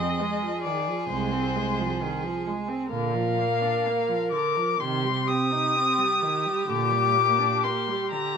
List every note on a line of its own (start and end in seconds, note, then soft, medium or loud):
0.00 0.22 C4 medium
0.00 2.88 G#4 medium
0.00 0.62 D#5 loud
0.20 0.44 G#3 medium
0.42 0.67 F3 medium
0.63 0.89 D#3 medium
0.63 1.07 D5 medium
0.87 1.09 F3 medium
1.08 1.85 C2 medium
1.08 1.34 G#3 medium
1.08 2.43 C5 medium
1.33 1.57 C4 medium
1.56 1.80 G#3 medium
1.78 2.03 F3 medium
2.01 2.25 D#3 medium
2.24 2.48 F3 medium
2.47 2.70 G#3 medium
2.68 2.91 C4 medium
2.90 3.69 A#2 medium
2.90 3.16 D3 medium
2.90 4.82 A#4 medium
2.90 4.28 F5 medium
3.14 3.40 F3 medium
3.38 3.63 A#3 medium
3.62 3.88 D4 medium
3.86 4.10 A#3 medium
4.08 4.33 F3 medium
4.32 4.58 D3 medium
4.32 4.82 D6 medium
4.56 4.80 F3 medium
4.80 5.60 C3 medium
4.80 5.06 D#3 medium
4.80 8.37 G4 medium
4.80 5.29 C6 loud
5.05 5.31 G3 medium
5.28 5.53 C4 medium
5.28 6.71 D#6 loud
5.52 5.78 D#4 medium
5.76 6.00 C4 medium
5.98 6.24 G3 medium
6.22 6.47 D#3 medium
6.46 6.68 G3 medium
6.69 7.48 A#2 medium
6.69 6.93 D3 medium
6.69 7.65 D6 loud
6.92 7.17 G3 medium
7.15 7.40 A#3 medium
7.39 7.66 D4 medium
7.64 7.89 A#3 medium
7.64 8.11 C6 medium
7.87 8.13 G3 medium
8.11 8.37 D3 medium
8.11 8.37 A#5 medium